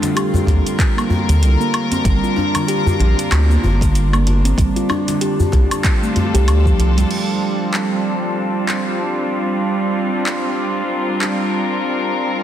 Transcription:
Already playing: D3 G3 C4 F4
0.02 D3, closed hi-hat, djembe slap, cabasa
0.16 G4, closed hi-hat, cabasa, low woodblock
0.34 djembe bass, cabasa
0.39 A#4
0.47 D#2, kick, closed hi-hat, djembe slap
0.66 closed hi-hat, cabasa
0.79 kick, clap, closed hi-hat, cabasa
0.97 A#3, cabasa, low woodblock
1.10 djembe bass
1.29 D#2 D3, closed hi-hat, cabasa
1.42 C2, closed hi-hat, cabasa
1.60 A#3, cabasa
1.74 closed hi-hat, low woodblock
1.91 C4, closed hi-hat, djembe tone, cabasa
2.05 G1 G3 D4, kick, closed hi-hat, cabasa
2.24 F4, cabasa
2.36 D4, djembe slap, djembe tone
2.55 D3, closed hi-hat, djembe slap, cabasa, low woodblock
2.68 G4, closed hi-hat, cabasa
2.86 djembe bass, cabasa
2.99 A#1, closed hi-hat, djembe slap, djembe tone
3.19 closed hi-hat, cabasa
3.32 D2, clap, closed hi-hat, cabasa, low woodblock
3.50 A#3, cabasa
3.63 G1, djembe bass
3.81 D3, kick, closed hi-hat, djembe tone, cabasa
3.95 closed hi-hat, cabasa
4.13 A#3, cabasa, low woodblock
4.27 closed hi-hat, djembe tone
4.45 C4, closed hi-hat, cabasa
4.58 A1 G3, kick, closed hi-hat, cabasa
4.72 G3
4.76 F4, closed hi-hat, cabasa
4.89 D4, djembe slap, djembe tone, low woodblock
5.08 D3, closed hi-hat, djembe slap, cabasa
5.21 G4, closed hi-hat, cabasa
5.40 djembe bass, cabasa
5.52 C2, kick, closed hi-hat, djembe slap, djembe tone
5.70 C4, closed hi-hat, cabasa, low woodblock
5.75 F4 A4
5.84 kick, clap, closed hi-hat, cabasa
6.03 A3, cabasa
6.16 closed hi-hat, djembe bass
6.34 C2 G4, closed hi-hat, cabasa
6.47 D2, closed hi-hat, cabasa, low woodblock
6.66 F3, kick, cabasa
6.79 C2, closed hi-hat
6.97 G3, closed hi-hat, djembe tone, cabasa
7.11 crash
7.74 clap
8.69 clap
10.26 clap
10.79 A#4
11.21 clap

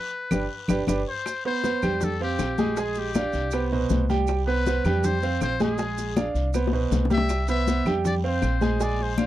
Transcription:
Already playing: B4
0.31 G1 D4 G4 B4, low bongo, low conga, long guiro, claves, maracas
0.68 G1 D4 G4 B4, low bongo, low conga, long guiro, claves, maracas
0.87 G1 D4 G4 B4, low bongo, low conga, long guiro, claves, maracas
1.08 C5
1.26 high bongo, high conga, long guiro, claves, maracas
1.45 B3 B4 C5, high bongo, high conga
1.64 B3 B4 C5, high bongo, high conga, short guiro, maracas
1.83 F2 G3 G4 G5, high conga, low conga, short guiro, claves, maracas
2.01 A4, high bongo, high conga, low conga, long guiro, maracas
2.20 C4 G4 C5 F5, high bongo, high conga
2.39 A#1, high bongo, low bongo, high conga, short guiro, claves, maracas
2.58 G#3 G#4 G#5, high bongo, high conga, short guiro, maracas
2.77 G#3 G#4 G#5, high bongo, high conga, long guiro, maracas
2.95 high bongo, high conga, maracas
2.99 G4
3.14 D4 D5 F5, high bongo, high conga, short guiro, claves, maracas
3.33 C2, high conga, short guiro, maracas
3.51 B3 B4 C5, high bongo, high conga, long guiro, claves, maracas
3.71 B2 B4 C5, high bongo, high conga
3.89 C2, high bongo, low bongo, high conga, short guiro, maracas
4.10 G3 G4 G5, high bongo, high conga, short guiro, maracas
4.27 high bongo, long guiro, claves, maracas
4.47 B3 B4 C5, high bongo, high conga
4.66 B3 B4 C5, high bongo, high conga, short guiro, maracas
4.85 F2 G3 G4 G5, high conga, low conga, short guiro, claves, maracas
5.04 C5, high bongo, high conga, low conga, long guiro, maracas
5.23 C4 C5 F5, high bongo, high conga, maracas
5.41 A#1 C5, high bongo, low bongo, high conga, short guiro, claves, maracas
5.60 G#3 G#4 G#5, high bongo, high conga, short guiro, maracas
5.78 G#3 G#4 G#5, high bongo, high conga, long guiro, maracas
5.98 high bongo, high conga, maracas
6.16 D4 D5 F5, high bongo, high conga, short guiro, claves, maracas
6.35 C2, high conga, short guiro, maracas
6.54 B3 B4 C5, high bongo, high conga, long guiro, claves, maracas
6.67 high bongo
6.73 B2 B4 C5, high conga
6.91 C2, low bongo, high conga, short guiro, maracas
7.05 low bongo
7.10 G3 G4 E5 G5, high conga, short guiro, maracas
7.18 low bongo
7.29 high bongo, high conga, long guiro, claves, maracas
7.48 B3 B4 C5 E5, high bongo, high conga, maracas
7.67 B3 B4 C5, high bongo, high conga, short guiro, maracas
7.85 F2 G3 G4 G5, high conga, low conga, short guiro, claves, maracas
8.05 D5, high bongo, high conga, low conga, long guiro, maracas
8.24 C4 C5 F5, high bongo, high conga
8.42 A#1, high bongo, low bongo, high conga, short guiro, claves, maracas
8.61 G#3 G#4 G#5, high bongo, high conga, short guiro, maracas
8.80 G#3 G#4 D5 G#5, high bongo, high conga, long guiro, maracas
8.99 C5, high bongo, high conga
9.18 D4 D5 F5, high bongo, high conga, short guiro, claves, maracas

